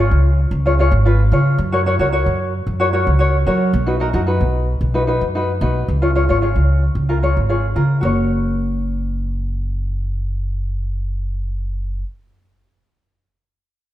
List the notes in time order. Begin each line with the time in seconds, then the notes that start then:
0.00 F4 G#4 C#5
0.11 C#2
0.51 C#2
0.66 F4 G#4 C#5
0.79 F4 G#4 C#5
0.91 G#1
1.05 F4 G#4 B4
1.32 C#3 F4 G#4 C#5
1.58 F#2
1.72 F#4 A#4 C#5
1.86 F#4 A#4 C#5
1.99 C#2 F#4 A#4 C#5
2.12 F#4 A#4 C#5
2.26 F#2
2.67 F#2
2.80 F#4 A#4 C#5
2.93 F#4 A#4 C#5
3.07 C#2
3.19 F#4 A#4 C#5
3.46 F#3 F#4 A#4 C#5
3.73 B1
3.86 D#4 F#4 B4
4.00 D#4 F#4 A#4
4.13 F#2 D#4 F#4 A#4
4.26 D#4 F#4 B4
4.41 B1
4.81 B1
4.94 D#4 F#4 B4
5.07 D#4 F#4 B4
5.21 F#2
5.35 D#4 F#4 B4
5.61 B1 D#4 F#4 B4
5.88 C#2
6.02 F4 G#4 C#5
6.15 F4 G#4 C#5
6.29 G#1 F4 G#4 C#5
6.42 F4 G#4 C#5
6.56 C#2
6.95 C#2
7.09 F4 G#4 A#4
7.23 F4 G#4 C#5
7.37 G#1
7.49 F4 G#4 C#5
7.75 C#3 F4 G#4 A#4
8.01 F#1 F#4 A#4 C#5